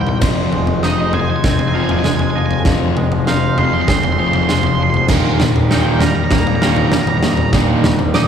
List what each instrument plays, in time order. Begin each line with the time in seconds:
Already playing: picked electric bass C2, distorted electric guitar D#2 A#2, clean electric guitar D#3 G3 A#3 D#4 C5, harmonium G3 D#4 A#4
0.02 lead electric guitar G5
0.07 lead electric guitar G5, floor tom
0.21 picked electric bass F1, distorted electric guitar F2 C3 F3, clean electric guitar F2 C5, harmonium G#3 F4 D#5, kick, snare, floor tom, crash
0.53 distorted electric guitar F2 C3, clean electric guitar G#3, floor tom, mid tom
0.67 floor tom
0.83 distorted electric guitar F2 C3 F3, clean electric guitar D#4, lead electric guitar D#5, snare
1.13 distorted electric guitar F2 C3, clean electric guitar G#3 C5, lead electric guitar G#5, floor tom
1.20 lead electric guitar G#5
1.30 lead electric guitar G#5
1.36 lead electric guitar G#5
1.44 picked electric bass F1, distorted electric guitar F2 C3, clean electric guitar C4, lead electric guitar G#5, kick, snare, floor tom
1.52 lead electric guitar G#5
1.59 lead electric guitar G#5, floor tom
1.68 lead electric guitar G#5
1.74 distorted electric guitar F2 C3 F3, clean electric guitar F3 F5, lead electric guitar G#5
1.84 lead electric guitar G#5
1.89 lead electric guitar G#5, floor tom
1.99 lead electric guitar G#5
2.04 picked electric bass F1, distorted electric guitar F2 C3, clean electric guitar G#3, lead electric guitar G#5, snare, mid tom
2.15 lead electric guitar G#5
2.19 lead electric guitar G#5, floor tom
2.31 lead electric guitar G#5
2.35 distorted electric guitar F2 C3, clean electric guitar F3 D#5, lead electric guitar G#5
2.46 lead electric guitar G#5
2.51 lead electric guitar G#5, floor tom
2.65 picked electric bass F1, distorted electric guitar F2 C3 F3, clean electric guitar F2, harmonium F5, kick, snare, floor tom
2.96 distorted electric guitar F2 C3, clean electric guitar G#3, floor tom, mid tom
3.12 floor tom
3.27 distorted electric guitar F2 C3, clean electric guitar D#4 C5, lead electric guitar F5, snare
3.58 distorted electric guitar F2 C3 F3, clean electric guitar G#3, lead electric guitar C6, floor tom
3.65 lead electric guitar C6
3.74 lead electric guitar C6
3.81 lead electric guitar C6
3.88 picked electric bass F1, distorted electric guitar F2 C3, clean electric guitar C4 G#4, lead electric guitar C6, kick, snare, floor tom, mid tom
3.97 lead electric guitar C6
4.03 lead electric guitar C6, floor tom, mid tom
4.13 lead electric guitar C6
4.18 distorted electric guitar F2 C3 F3, clean electric guitar F3, lead electric guitar C6
4.28 lead electric guitar C6
4.33 lead electric guitar C6, floor tom
4.43 lead electric guitar C6
4.48 picked electric bass F1, distorted electric guitar F2 C3, clean electric guitar G#3 C5, lead electric guitar C6, snare
4.59 lead electric guitar C6, floor tom
4.67 lead electric guitar C6
4.75 lead electric guitar C6
4.79 distorted electric guitar F2 C3, clean electric guitar F3, lead electric guitar C6
4.90 lead electric guitar C6, floor tom
4.97 lead electric guitar C6
5.08 picked electric bass D#1, clean electric guitar D#2 A#4, distorted electric guitar D#2 A#2, harmonium A#4, kick, snare, floor tom, crash
5.12 distorted electric guitar D#3, harmonium G3 D#4
5.40 distorted electric guitar D#2 A#2, clean electric guitar G3, snare, floor tom, mid tom
5.56 floor tom
5.71 distorted electric guitar D#2 A#2 D#3, clean electric guitar D#4, lead electric guitar G5, snare
6.00 distorted electric guitar D#2 A#2, clean electric guitar G3 A#4, lead electric guitar A#5, snare, floor tom
6.09 lead electric guitar A#5
6.16 lead electric guitar A#5
6.24 lead electric guitar A#5
6.31 picked electric bass D#1, distorted electric guitar D#2 A#2, clean electric guitar A#3, lead electric guitar A#5, kick, snare, floor tom
6.39 lead electric guitar A#5
6.47 lead electric guitar A#5, floor tom
6.55 lead electric guitar A#5
6.62 distorted electric guitar D#2 A#2 D#3, clean electric guitar D#3 F5, lead electric guitar A#5, snare
6.70 lead electric guitar A#5
6.76 lead electric guitar A#5, floor tom
6.86 lead electric guitar A#5
6.92 picked electric bass D#1, distorted electric guitar D#2 A#2, clean electric guitar G3, lead electric guitar A#5, snare, mid tom
7.02 lead electric guitar A#5
7.07 lead electric guitar A#5, floor tom
7.18 lead electric guitar A#5
7.23 distorted electric guitar D#2 A#2, clean electric guitar D#3 D#5, lead electric guitar A#5, snare
7.33 lead electric guitar A#5
7.37 lead electric guitar A#5, floor tom
7.53 picked electric bass D#1, distorted electric guitar D#2 A#2 D#3, clean electric guitar D#2, harmonium D#4, kick, snare, floor tom
7.84 distorted electric guitar D#2 A#2, clean electric guitar G3, snare, floor tom, mid tom
7.99 floor tom
8.14 distorted electric guitar D#2 A#2, clean electric guitar D#4 D6, lead electric guitar D#5, snare